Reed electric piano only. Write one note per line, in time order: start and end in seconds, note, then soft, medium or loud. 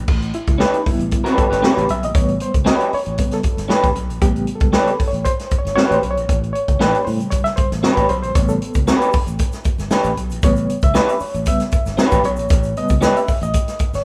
0.35 0.61 E4 medium
0.61 0.74 G4 medium
0.74 0.86 D#4 medium
0.86 2.14 C#3 soft
0.86 2.14 G3 soft
0.86 2.14 B3 medium
0.86 1.39 E4 medium
1.38 1.65 A4 loud
1.64 1.90 G4 medium
1.91 2.03 E5 loud
2.05 2.16 D#5 medium
2.15 2.38 C#3 medium
2.15 2.50 G3 medium
2.15 2.50 B3 medium
2.15 2.42 C#5 loud
2.42 2.68 C5 loud
2.67 2.94 D#5 medium
2.94 3.34 C#5 loud
3.18 3.42 C#3 medium
3.18 3.42 G3 medium
3.18 3.42 B3 medium
3.34 3.81 A4 medium
4.21 4.95 C#3 medium
4.21 4.96 G3 medium
4.21 4.96 B3 medium
4.21 4.58 G4 medium
4.55 4.74 A4 medium
4.73 4.89 C#5 medium
4.90 5.09 A4 medium
5.08 5.26 C#5 medium
5.25 5.61 C5 loud
5.59 5.74 C#5 medium
5.75 5.94 C#5 loud
5.94 6.12 C5 medium
6.11 6.35 C#5 loud
6.53 7.07 C#5 loud
7.05 9.10 B2 medium
7.05 8.35 C#3 medium
7.05 8.35 G3 soft
7.05 7.17 C5 medium
7.30 7.37 C#5 loud
7.44 7.58 E5 loud
7.56 7.98 C5 loud
7.96 8.08 C#5 medium
8.09 8.21 C5 medium
8.22 8.36 C5 medium
8.35 8.59 C#3 medium
8.35 8.60 G3 medium
8.35 9.11 B3 medium
8.35 8.50 C#5 loud
8.49 9.75 A4 medium
10.43 10.78 C#3 medium
10.43 10.79 G3 medium
10.43 10.79 B3 medium
10.43 10.85 C#5 loud
10.84 11.23 E5 loud
11.21 11.48 C#5 medium
11.47 11.70 C#3 medium
11.47 11.71 G3 medium
11.47 11.71 B3 medium
11.47 12.21 E5 loud
12.25 12.78 C#5 loud
12.77 13.12 C#3 medium
12.77 13.12 G3 soft
12.77 13.12 B3 medium
12.77 13.18 D#5 loud
13.17 13.43 E5 medium
13.43 13.91 D#5 loud
13.95 14.04 C#5 medium